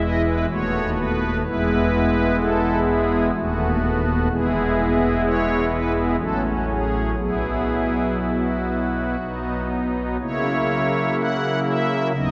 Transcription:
Already playing: E1 E2 E3 G#3 E4
0.01 D#5
0.25 B4
0.49 D#1 D#2 A3 B3 F#4 C#5
0.96 B4
1.44 E1 E2 G#3 B3 E4 B4
2.39 A4
2.85 G#4
3.35 D#1 D#2 A3 B3 F#4
4.30 E1 E2 G#3 B3 E4 G#4
5.24 C#5
5.71 B4
5.96 G#4
6.19 A1 A2 F#3 C#4 F#4 A4
6.44 F#4
6.69 G#4
7.19 B1 B2 F#3 B3 E4 G#4
8.20 F#4
8.27 G#4
8.35 F#4
9.20 B1 B2 F#3 B3 D#4
10.20 C#3 F#3 A#3 E4 C#5
11.19 F#5
11.67 E5
12.16 D#1 D#2 F#3 B3 D#4 D#5

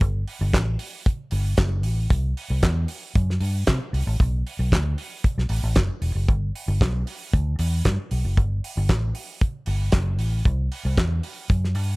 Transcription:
0.01 G1, kick, closed hi-hat
0.28 open hi-hat
0.41 G1
0.54 A1, kick, snare, clap, closed hi-hat
0.79 open hi-hat
1.06 kick, closed hi-hat
1.31 G1, open hi-hat
1.57 F#1, kick, snare, clap, closed hi-hat
1.83 A1, open hi-hat
2.10 C2, kick, closed hi-hat
2.37 open hi-hat
2.50 C2
2.63 E2, kick, snare, clap, closed hi-hat
2.88 open hi-hat
3.15 F#2, kick, closed hi-hat
3.30 snare
3.40 G2, open hi-hat
3.67 C3, kick, snare, clap, closed hi-hat
3.93 C2, open hi-hat
4.07 A1
4.20 B1, kick, closed hi-hat
4.47 open hi-hat
4.59 B1
4.72 D2, kick, snare, clap, closed hi-hat
4.98 open hi-hat
5.24 kick, closed hi-hat
5.38 B1, snare
5.49 A1, open hi-hat
5.63 A1
5.75 F#1, kick, snare, clap, closed hi-hat
6.02 E1, open hi-hat
6.15 F#1
6.29 G1, kick, closed hi-hat
6.55 open hi-hat
6.68 G1
6.81 B1, kick, snare, clap, closed hi-hat
7.07 open hi-hat
7.33 D2, kick, closed hi-hat
7.59 E2, open hi-hat
7.85 G2, kick, snare, clap, closed hi-hat
8.11 B1, open hi-hat
8.25 F#1
8.37 G1, kick, closed hi-hat
8.64 open hi-hat
8.77 G1
8.89 A1, kick, snare, clap, closed hi-hat
9.15 open hi-hat
9.41 kick, closed hi-hat
9.66 G1, open hi-hat
9.92 F#1, kick, snare, clap, closed hi-hat
10.19 A1, open hi-hat
10.45 C2, kick, closed hi-hat
10.72 open hi-hat
10.85 C2
10.97 E2, kick, snare, clap, closed hi-hat
11.23 open hi-hat
11.50 F#2, kick, closed hi-hat
11.64 snare
11.75 G2, open hi-hat

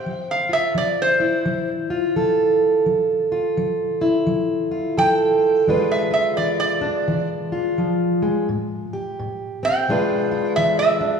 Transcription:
Already playing: C4 C5 G5
0.06 F3
0.31 F5
0.49 F4 E5
0.75 F3 D5
1.02 C5
1.20 E4
1.46 F3
1.90 F4
2.16 F3 A4
2.86 F3
3.32 F4
3.57 F3
4.01 E4
4.27 F3
4.71 F4
4.98 F3 A4 G5
5.67 E3 G#3 D4 F4 B4
5.91 E5
6.11 F4 E5
6.37 E3 D5
6.60 D5
6.81 D4
7.08 E3
7.52 F4
7.78 F3
8.22 G#3
8.49 A2
8.93 G4
9.19 A2
9.63 C4 G5
9.88 E3 G#3 D4 F4 B4
10.31 F4
10.56 E3 E5
10.79 E5
11.01 D4

